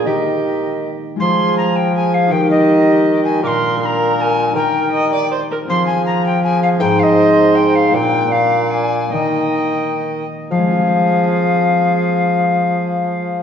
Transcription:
0.03 D#3 A#3 D#4 G4 D#5
1.16 F3 G#3 F4 G#4 C6
1.20 F3 G#4
1.57 A#5
1.76 G5
1.94 G#4 G#5
2.14 F5
2.27 D#4 G4 A#4
2.31 D#3 G4 G5
2.50 D#5
3.24 G#5
3.39 A#2 D4 F4 A#4
3.43 A#4 C6 D6
3.77 D4 F4 A#4 C6
3.85 A#5
4.17 G#5 A#5
4.50 D#4 G4 A#4
4.55 D#3 A#4 G5
4.92 D#5
5.13 D5
5.32 C5
5.51 A#4
5.65 F3 C4 F4 G#4
5.69 F3 C6
5.86 G#5
6.06 A#5
6.25 G5
6.43 G#4 G#5
6.62 F5
6.77 C4 D#4 G#4 C5 G5
6.81 G#2
6.99 D#5 F5
7.55 G5
7.75 F5
7.89 A#2 A#3 D4 F4
7.94 A#2 D5 G5
8.28 A#3 D4 F4 D5 F5
8.70 G#5
9.09 D#3 A#3 D#4 D#5 G5
9.14 D#3
10.51 F3 G#4 F5
10.58 G#3
10.65 C4
10.72 F4
10.79 G#4
10.86 C5

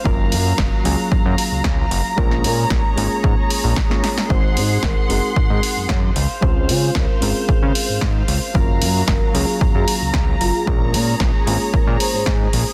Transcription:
Already playing: F5
0.04 F#1 F#3 A#3 C#4 F4 A#4 A#5, kick
0.32 F#2, open hi-hat
0.58 F#1, kick, snare
0.84 C#2 F#3 A#3 C#4 F4 G#4, open hi-hat
1.12 F#2, kick
1.25 F#2
1.38 open hi-hat
1.52 C#2
1.64 C#2, kick, snare
1.91 F#1, open hi-hat
2.16 A#1 G#3 A#3 C#4 F4 G#4 A#4 C#5, kick
2.31 snare
2.44 A#2, open hi-hat
2.70 A#1, kick, snare
2.96 G#1 G#3 A#3 C#4 F4 G#4, open hi-hat
3.24 G#2, kick
3.50 open hi-hat
3.64 A#1
3.76 kick, snare
3.90 G#3 A#3 C#4 F4 C#5, snare
4.04 snare, open hi-hat
4.18 snare
4.29 G#1 G#3 C4 D#4 F#4 C5 F#5 C6, kick
4.57 G#2, open hi-hat
4.83 G#1 A#4, kick, snare
5.09 F#1 G#3 C4 D#4 F#4 G#4 A#4, open hi-hat
5.36 G#2, kick
5.50 G#2 G#4
5.63 open hi-hat
5.77 F#2
5.89 F#2, kick, snare
6.16 C#2 C5 F5, open hi-hat
6.41 C#2 G#3 C4 C#4 F4 C5, kick
6.69 C#3 F4, open hi-hat
6.95 C#2 A#4, kick, snare
7.10 A#4
7.21 G#1 G#3 C4 C#4 F4 G#4 A#4, open hi-hat
7.49 kick
7.63 C#3
7.75 open hi-hat
7.89 G#2
8.01 G#2, kick, snare
8.28 C#2, open hi-hat
8.54 F#1 F#3 A#3 C#4 F4 A#4 A#5, kick
8.82 F#2, open hi-hat
9.08 F#1 A#4, kick, snare
9.33 C#2 F#3 A#3 C#4 F4 G#4, open hi-hat
9.61 F#2, kick
9.75 F#2 G#4
9.88 open hi-hat
10.02 C#2
10.14 C#2, kick, snare
10.41 F#1 F4, open hi-hat
10.55 G#4
10.66 A#1 G#3 A#3 C#4 F4 G#4 A#4 C#5, kick
10.94 A#2, open hi-hat
11.20 A#1, kick, snare
11.46 G#1 G#3 A#3 C#4 F4 G#4, open hi-hat
11.74 A#4, kick
11.87 A#2
12.00 C5, open hi-hat
12.14 G#2 C5
12.26 G#2, kick, snare
12.53 A#1, open hi-hat

